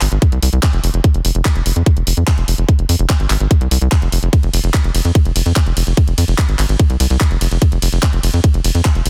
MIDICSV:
0, 0, Header, 1, 3, 480
1, 0, Start_track
1, 0, Key_signature, -4, "minor"
1, 0, Tempo, 410959
1, 1217, Time_signature, 4, 2, 24, 8
1, 10624, End_track
2, 0, Start_track
2, 0, Title_t, "Analog synth bass"
2, 0, Program_c, 0, 38
2, 16, Note_on_c, 0, 32, 100
2, 95, Note_off_c, 0, 32, 0
2, 136, Note_on_c, 0, 32, 94
2, 215, Note_off_c, 0, 32, 0
2, 376, Note_on_c, 0, 36, 86
2, 455, Note_off_c, 0, 36, 0
2, 496, Note_on_c, 0, 36, 102
2, 575, Note_off_c, 0, 36, 0
2, 616, Note_on_c, 0, 36, 93
2, 695, Note_off_c, 0, 36, 0
2, 856, Note_on_c, 0, 29, 89
2, 935, Note_off_c, 0, 29, 0
2, 976, Note_on_c, 0, 29, 105
2, 1055, Note_off_c, 0, 29, 0
2, 1096, Note_on_c, 0, 29, 94
2, 1175, Note_off_c, 0, 29, 0
2, 1337, Note_on_c, 0, 29, 84
2, 1415, Note_off_c, 0, 29, 0
2, 1457, Note_on_c, 0, 29, 104
2, 1535, Note_off_c, 0, 29, 0
2, 1577, Note_on_c, 0, 29, 99
2, 1655, Note_off_c, 0, 29, 0
2, 1817, Note_on_c, 0, 29, 88
2, 1895, Note_off_c, 0, 29, 0
2, 1937, Note_on_c, 0, 29, 101
2, 2015, Note_off_c, 0, 29, 0
2, 2057, Note_on_c, 0, 41, 94
2, 2135, Note_off_c, 0, 41, 0
2, 2297, Note_on_c, 0, 29, 86
2, 2375, Note_off_c, 0, 29, 0
2, 2417, Note_on_c, 0, 29, 101
2, 2495, Note_off_c, 0, 29, 0
2, 2537, Note_on_c, 0, 41, 91
2, 2615, Note_off_c, 0, 41, 0
2, 2777, Note_on_c, 0, 29, 87
2, 2855, Note_off_c, 0, 29, 0
2, 2897, Note_on_c, 0, 29, 103
2, 2975, Note_off_c, 0, 29, 0
2, 3017, Note_on_c, 0, 29, 94
2, 3095, Note_off_c, 0, 29, 0
2, 3256, Note_on_c, 0, 29, 84
2, 3335, Note_off_c, 0, 29, 0
2, 3376, Note_on_c, 0, 41, 104
2, 3455, Note_off_c, 0, 41, 0
2, 3497, Note_on_c, 0, 29, 96
2, 3575, Note_off_c, 0, 29, 0
2, 3737, Note_on_c, 0, 32, 87
2, 3815, Note_off_c, 0, 32, 0
2, 3857, Note_on_c, 0, 32, 99
2, 3935, Note_off_c, 0, 32, 0
2, 3976, Note_on_c, 0, 32, 89
2, 4054, Note_off_c, 0, 32, 0
2, 4216, Note_on_c, 0, 36, 87
2, 4295, Note_off_c, 0, 36, 0
2, 4336, Note_on_c, 0, 36, 101
2, 4415, Note_off_c, 0, 36, 0
2, 4456, Note_on_c, 0, 36, 93
2, 4535, Note_off_c, 0, 36, 0
2, 4696, Note_on_c, 0, 29, 88
2, 4775, Note_off_c, 0, 29, 0
2, 4816, Note_on_c, 0, 29, 104
2, 4895, Note_off_c, 0, 29, 0
2, 4936, Note_on_c, 0, 29, 96
2, 5015, Note_off_c, 0, 29, 0
2, 5176, Note_on_c, 0, 29, 83
2, 5255, Note_off_c, 0, 29, 0
2, 5296, Note_on_c, 0, 29, 103
2, 5375, Note_off_c, 0, 29, 0
2, 5416, Note_on_c, 0, 29, 98
2, 5495, Note_off_c, 0, 29, 0
2, 5656, Note_on_c, 0, 29, 89
2, 5735, Note_off_c, 0, 29, 0
2, 5776, Note_on_c, 0, 29, 102
2, 5854, Note_off_c, 0, 29, 0
2, 5897, Note_on_c, 0, 41, 92
2, 5975, Note_off_c, 0, 41, 0
2, 6137, Note_on_c, 0, 29, 89
2, 6215, Note_off_c, 0, 29, 0
2, 6256, Note_on_c, 0, 29, 101
2, 6335, Note_off_c, 0, 29, 0
2, 6376, Note_on_c, 0, 41, 94
2, 6455, Note_off_c, 0, 41, 0
2, 6616, Note_on_c, 0, 29, 90
2, 6694, Note_off_c, 0, 29, 0
2, 6736, Note_on_c, 0, 29, 103
2, 6815, Note_off_c, 0, 29, 0
2, 6856, Note_on_c, 0, 29, 94
2, 6934, Note_off_c, 0, 29, 0
2, 7096, Note_on_c, 0, 29, 86
2, 7175, Note_off_c, 0, 29, 0
2, 7216, Note_on_c, 0, 41, 102
2, 7295, Note_off_c, 0, 41, 0
2, 7336, Note_on_c, 0, 29, 97
2, 7415, Note_off_c, 0, 29, 0
2, 7576, Note_on_c, 0, 32, 89
2, 7655, Note_off_c, 0, 32, 0
2, 7696, Note_on_c, 0, 32, 101
2, 7775, Note_off_c, 0, 32, 0
2, 7816, Note_on_c, 0, 32, 93
2, 7895, Note_off_c, 0, 32, 0
2, 8057, Note_on_c, 0, 36, 89
2, 8135, Note_off_c, 0, 36, 0
2, 8176, Note_on_c, 0, 36, 100
2, 8255, Note_off_c, 0, 36, 0
2, 8297, Note_on_c, 0, 36, 94
2, 8375, Note_off_c, 0, 36, 0
2, 8537, Note_on_c, 0, 29, 88
2, 8615, Note_off_c, 0, 29, 0
2, 8657, Note_on_c, 0, 29, 104
2, 8735, Note_off_c, 0, 29, 0
2, 8777, Note_on_c, 0, 29, 95
2, 8855, Note_off_c, 0, 29, 0
2, 9017, Note_on_c, 0, 29, 82
2, 9095, Note_off_c, 0, 29, 0
2, 9137, Note_on_c, 0, 29, 104
2, 9215, Note_off_c, 0, 29, 0
2, 9257, Note_on_c, 0, 29, 97
2, 9335, Note_off_c, 0, 29, 0
2, 9497, Note_on_c, 0, 29, 87
2, 9575, Note_off_c, 0, 29, 0
2, 9617, Note_on_c, 0, 29, 101
2, 9695, Note_off_c, 0, 29, 0
2, 9737, Note_on_c, 0, 41, 94
2, 9815, Note_off_c, 0, 41, 0
2, 9976, Note_on_c, 0, 29, 88
2, 10055, Note_off_c, 0, 29, 0
2, 10097, Note_on_c, 0, 29, 102
2, 10175, Note_off_c, 0, 29, 0
2, 10217, Note_on_c, 0, 41, 93
2, 10295, Note_off_c, 0, 41, 0
2, 10457, Note_on_c, 0, 29, 89
2, 10535, Note_off_c, 0, 29, 0
2, 10577, Note_on_c, 0, 29, 106
2, 10624, Note_off_c, 0, 29, 0
2, 10624, End_track
3, 0, Start_track
3, 0, Title_t, "Drums"
3, 17, Note_on_c, 9, 39, 64
3, 17, Note_on_c, 9, 46, 113
3, 133, Note_off_c, 9, 39, 0
3, 133, Note_off_c, 9, 46, 0
3, 137, Note_on_c, 9, 42, 41
3, 253, Note_off_c, 9, 42, 0
3, 256, Note_on_c, 9, 36, 127
3, 256, Note_on_c, 9, 42, 96
3, 373, Note_off_c, 9, 36, 0
3, 373, Note_off_c, 9, 42, 0
3, 376, Note_on_c, 9, 42, 41
3, 493, Note_off_c, 9, 42, 0
3, 496, Note_on_c, 9, 46, 115
3, 613, Note_off_c, 9, 46, 0
3, 616, Note_on_c, 9, 42, 42
3, 733, Note_off_c, 9, 42, 0
3, 736, Note_on_c, 9, 39, 127
3, 736, Note_on_c, 9, 42, 97
3, 737, Note_on_c, 9, 36, 127
3, 853, Note_off_c, 9, 36, 0
3, 853, Note_off_c, 9, 39, 0
3, 853, Note_off_c, 9, 42, 0
3, 856, Note_on_c, 9, 42, 41
3, 973, Note_off_c, 9, 42, 0
3, 976, Note_on_c, 9, 46, 108
3, 1093, Note_off_c, 9, 46, 0
3, 1096, Note_on_c, 9, 42, 41
3, 1213, Note_off_c, 9, 42, 0
3, 1216, Note_on_c, 9, 42, 92
3, 1217, Note_on_c, 9, 36, 127
3, 1333, Note_off_c, 9, 36, 0
3, 1333, Note_off_c, 9, 42, 0
3, 1336, Note_on_c, 9, 42, 39
3, 1453, Note_off_c, 9, 42, 0
3, 1456, Note_on_c, 9, 46, 112
3, 1573, Note_off_c, 9, 46, 0
3, 1577, Note_on_c, 9, 42, 41
3, 1693, Note_off_c, 9, 42, 0
3, 1696, Note_on_c, 9, 39, 122
3, 1696, Note_on_c, 9, 42, 96
3, 1697, Note_on_c, 9, 36, 127
3, 1813, Note_off_c, 9, 36, 0
3, 1813, Note_off_c, 9, 39, 0
3, 1813, Note_off_c, 9, 42, 0
3, 1816, Note_on_c, 9, 42, 40
3, 1933, Note_off_c, 9, 42, 0
3, 1937, Note_on_c, 9, 46, 115
3, 2053, Note_off_c, 9, 46, 0
3, 2057, Note_on_c, 9, 42, 41
3, 2174, Note_off_c, 9, 42, 0
3, 2177, Note_on_c, 9, 36, 127
3, 2177, Note_on_c, 9, 42, 92
3, 2293, Note_off_c, 9, 36, 0
3, 2293, Note_off_c, 9, 42, 0
3, 2297, Note_on_c, 9, 42, 40
3, 2413, Note_off_c, 9, 42, 0
3, 2417, Note_on_c, 9, 46, 114
3, 2534, Note_off_c, 9, 46, 0
3, 2537, Note_on_c, 9, 42, 39
3, 2653, Note_off_c, 9, 42, 0
3, 2657, Note_on_c, 9, 36, 127
3, 2657, Note_on_c, 9, 39, 124
3, 2657, Note_on_c, 9, 42, 91
3, 2773, Note_off_c, 9, 36, 0
3, 2774, Note_off_c, 9, 39, 0
3, 2774, Note_off_c, 9, 42, 0
3, 2777, Note_on_c, 9, 42, 40
3, 2893, Note_off_c, 9, 42, 0
3, 2897, Note_on_c, 9, 46, 108
3, 3013, Note_off_c, 9, 46, 0
3, 3017, Note_on_c, 9, 42, 39
3, 3134, Note_off_c, 9, 42, 0
3, 3137, Note_on_c, 9, 36, 127
3, 3137, Note_on_c, 9, 42, 89
3, 3253, Note_off_c, 9, 36, 0
3, 3254, Note_off_c, 9, 42, 0
3, 3257, Note_on_c, 9, 42, 38
3, 3374, Note_off_c, 9, 42, 0
3, 3377, Note_on_c, 9, 46, 113
3, 3494, Note_off_c, 9, 46, 0
3, 3497, Note_on_c, 9, 42, 40
3, 3613, Note_off_c, 9, 42, 0
3, 3617, Note_on_c, 9, 36, 119
3, 3617, Note_on_c, 9, 39, 122
3, 3617, Note_on_c, 9, 42, 93
3, 3733, Note_off_c, 9, 36, 0
3, 3733, Note_off_c, 9, 39, 0
3, 3733, Note_off_c, 9, 42, 0
3, 3737, Note_on_c, 9, 42, 38
3, 3854, Note_off_c, 9, 42, 0
3, 3857, Note_on_c, 9, 39, 62
3, 3857, Note_on_c, 9, 46, 112
3, 3974, Note_off_c, 9, 39, 0
3, 3974, Note_off_c, 9, 46, 0
3, 3977, Note_on_c, 9, 42, 39
3, 4093, Note_off_c, 9, 42, 0
3, 4097, Note_on_c, 9, 36, 123
3, 4097, Note_on_c, 9, 42, 91
3, 4213, Note_off_c, 9, 36, 0
3, 4214, Note_off_c, 9, 42, 0
3, 4217, Note_on_c, 9, 42, 39
3, 4334, Note_off_c, 9, 42, 0
3, 4337, Note_on_c, 9, 46, 116
3, 4454, Note_off_c, 9, 46, 0
3, 4457, Note_on_c, 9, 42, 39
3, 4574, Note_off_c, 9, 42, 0
3, 4577, Note_on_c, 9, 36, 126
3, 4577, Note_on_c, 9, 39, 116
3, 4577, Note_on_c, 9, 42, 90
3, 4693, Note_off_c, 9, 36, 0
3, 4693, Note_off_c, 9, 39, 0
3, 4693, Note_off_c, 9, 42, 0
3, 4697, Note_on_c, 9, 42, 39
3, 4814, Note_off_c, 9, 42, 0
3, 4817, Note_on_c, 9, 46, 107
3, 4934, Note_off_c, 9, 46, 0
3, 4937, Note_on_c, 9, 42, 39
3, 5054, Note_off_c, 9, 42, 0
3, 5057, Note_on_c, 9, 36, 121
3, 5057, Note_on_c, 9, 42, 93
3, 5057, Note_on_c, 9, 51, 57
3, 5174, Note_off_c, 9, 36, 0
3, 5174, Note_off_c, 9, 42, 0
3, 5174, Note_off_c, 9, 51, 0
3, 5177, Note_on_c, 9, 42, 38
3, 5294, Note_off_c, 9, 42, 0
3, 5297, Note_on_c, 9, 46, 109
3, 5297, Note_on_c, 9, 51, 79
3, 5414, Note_off_c, 9, 46, 0
3, 5414, Note_off_c, 9, 51, 0
3, 5417, Note_on_c, 9, 42, 40
3, 5534, Note_off_c, 9, 42, 0
3, 5537, Note_on_c, 9, 36, 119
3, 5537, Note_on_c, 9, 39, 116
3, 5537, Note_on_c, 9, 42, 91
3, 5654, Note_off_c, 9, 36, 0
3, 5654, Note_off_c, 9, 39, 0
3, 5654, Note_off_c, 9, 42, 0
3, 5657, Note_on_c, 9, 42, 39
3, 5774, Note_off_c, 9, 42, 0
3, 5777, Note_on_c, 9, 46, 107
3, 5777, Note_on_c, 9, 51, 79
3, 5893, Note_off_c, 9, 46, 0
3, 5893, Note_off_c, 9, 51, 0
3, 5897, Note_on_c, 9, 42, 40
3, 6013, Note_off_c, 9, 42, 0
3, 6017, Note_on_c, 9, 36, 125
3, 6017, Note_on_c, 9, 42, 90
3, 6017, Note_on_c, 9, 51, 58
3, 6134, Note_off_c, 9, 36, 0
3, 6134, Note_off_c, 9, 42, 0
3, 6134, Note_off_c, 9, 51, 0
3, 6137, Note_on_c, 9, 42, 39
3, 6253, Note_off_c, 9, 42, 0
3, 6257, Note_on_c, 9, 46, 111
3, 6257, Note_on_c, 9, 51, 84
3, 6374, Note_off_c, 9, 46, 0
3, 6374, Note_off_c, 9, 51, 0
3, 6377, Note_on_c, 9, 42, 39
3, 6493, Note_off_c, 9, 42, 0
3, 6497, Note_on_c, 9, 36, 119
3, 6497, Note_on_c, 9, 39, 115
3, 6497, Note_on_c, 9, 42, 92
3, 6613, Note_off_c, 9, 36, 0
3, 6613, Note_off_c, 9, 39, 0
3, 6613, Note_off_c, 9, 42, 0
3, 6616, Note_on_c, 9, 42, 39
3, 6733, Note_off_c, 9, 42, 0
3, 6736, Note_on_c, 9, 46, 106
3, 6736, Note_on_c, 9, 51, 79
3, 6853, Note_off_c, 9, 46, 0
3, 6853, Note_off_c, 9, 51, 0
3, 6856, Note_on_c, 9, 42, 38
3, 6973, Note_off_c, 9, 42, 0
3, 6976, Note_on_c, 9, 42, 97
3, 6976, Note_on_c, 9, 51, 61
3, 6977, Note_on_c, 9, 36, 118
3, 7093, Note_off_c, 9, 36, 0
3, 7093, Note_off_c, 9, 42, 0
3, 7093, Note_off_c, 9, 51, 0
3, 7096, Note_on_c, 9, 42, 41
3, 7213, Note_off_c, 9, 42, 0
3, 7216, Note_on_c, 9, 46, 107
3, 7216, Note_on_c, 9, 51, 82
3, 7333, Note_off_c, 9, 46, 0
3, 7333, Note_off_c, 9, 51, 0
3, 7336, Note_on_c, 9, 42, 41
3, 7453, Note_off_c, 9, 42, 0
3, 7457, Note_on_c, 9, 36, 111
3, 7457, Note_on_c, 9, 39, 117
3, 7457, Note_on_c, 9, 42, 97
3, 7573, Note_off_c, 9, 36, 0
3, 7573, Note_off_c, 9, 39, 0
3, 7573, Note_off_c, 9, 42, 0
3, 7577, Note_on_c, 9, 42, 40
3, 7693, Note_off_c, 9, 42, 0
3, 7697, Note_on_c, 9, 39, 62
3, 7697, Note_on_c, 9, 46, 103
3, 7697, Note_on_c, 9, 51, 84
3, 7813, Note_off_c, 9, 39, 0
3, 7813, Note_off_c, 9, 46, 0
3, 7813, Note_off_c, 9, 51, 0
3, 7817, Note_on_c, 9, 42, 40
3, 7933, Note_off_c, 9, 42, 0
3, 7937, Note_on_c, 9, 36, 120
3, 7937, Note_on_c, 9, 42, 97
3, 7937, Note_on_c, 9, 51, 61
3, 8053, Note_off_c, 9, 36, 0
3, 8053, Note_off_c, 9, 42, 0
3, 8053, Note_off_c, 9, 51, 0
3, 8057, Note_on_c, 9, 42, 40
3, 8173, Note_off_c, 9, 42, 0
3, 8177, Note_on_c, 9, 46, 105
3, 8177, Note_on_c, 9, 51, 84
3, 8293, Note_off_c, 9, 46, 0
3, 8293, Note_off_c, 9, 51, 0
3, 8297, Note_on_c, 9, 42, 39
3, 8413, Note_off_c, 9, 42, 0
3, 8417, Note_on_c, 9, 36, 122
3, 8417, Note_on_c, 9, 39, 116
3, 8417, Note_on_c, 9, 42, 92
3, 8533, Note_off_c, 9, 39, 0
3, 8533, Note_off_c, 9, 42, 0
3, 8534, Note_off_c, 9, 36, 0
3, 8536, Note_on_c, 9, 42, 41
3, 8653, Note_off_c, 9, 42, 0
3, 8657, Note_on_c, 9, 46, 101
3, 8657, Note_on_c, 9, 51, 83
3, 8773, Note_off_c, 9, 46, 0
3, 8773, Note_off_c, 9, 51, 0
3, 8777, Note_on_c, 9, 42, 40
3, 8894, Note_off_c, 9, 42, 0
3, 8897, Note_on_c, 9, 36, 117
3, 8897, Note_on_c, 9, 42, 100
3, 8897, Note_on_c, 9, 51, 61
3, 9013, Note_off_c, 9, 42, 0
3, 9013, Note_off_c, 9, 51, 0
3, 9014, Note_off_c, 9, 36, 0
3, 9017, Note_on_c, 9, 42, 41
3, 9134, Note_off_c, 9, 42, 0
3, 9137, Note_on_c, 9, 46, 106
3, 9137, Note_on_c, 9, 51, 86
3, 9254, Note_off_c, 9, 46, 0
3, 9254, Note_off_c, 9, 51, 0
3, 9257, Note_on_c, 9, 42, 41
3, 9374, Note_off_c, 9, 42, 0
3, 9377, Note_on_c, 9, 36, 117
3, 9377, Note_on_c, 9, 39, 122
3, 9377, Note_on_c, 9, 42, 99
3, 9494, Note_off_c, 9, 36, 0
3, 9494, Note_off_c, 9, 39, 0
3, 9494, Note_off_c, 9, 42, 0
3, 9497, Note_on_c, 9, 42, 42
3, 9614, Note_off_c, 9, 42, 0
3, 9617, Note_on_c, 9, 46, 103
3, 9617, Note_on_c, 9, 51, 88
3, 9734, Note_off_c, 9, 46, 0
3, 9734, Note_off_c, 9, 51, 0
3, 9737, Note_on_c, 9, 42, 43
3, 9854, Note_off_c, 9, 42, 0
3, 9857, Note_on_c, 9, 36, 119
3, 9857, Note_on_c, 9, 42, 99
3, 9857, Note_on_c, 9, 51, 62
3, 9974, Note_off_c, 9, 36, 0
3, 9974, Note_off_c, 9, 42, 0
3, 9974, Note_off_c, 9, 51, 0
3, 9977, Note_on_c, 9, 42, 42
3, 10094, Note_off_c, 9, 42, 0
3, 10097, Note_on_c, 9, 46, 103
3, 10097, Note_on_c, 9, 51, 86
3, 10214, Note_off_c, 9, 46, 0
3, 10214, Note_off_c, 9, 51, 0
3, 10217, Note_on_c, 9, 42, 42
3, 10334, Note_off_c, 9, 42, 0
3, 10337, Note_on_c, 9, 36, 113
3, 10337, Note_on_c, 9, 39, 123
3, 10337, Note_on_c, 9, 42, 99
3, 10454, Note_off_c, 9, 36, 0
3, 10454, Note_off_c, 9, 39, 0
3, 10454, Note_off_c, 9, 42, 0
3, 10457, Note_on_c, 9, 42, 43
3, 10574, Note_off_c, 9, 42, 0
3, 10577, Note_on_c, 9, 46, 103
3, 10577, Note_on_c, 9, 51, 82
3, 10624, Note_off_c, 9, 46, 0
3, 10624, Note_off_c, 9, 51, 0
3, 10624, End_track
0, 0, End_of_file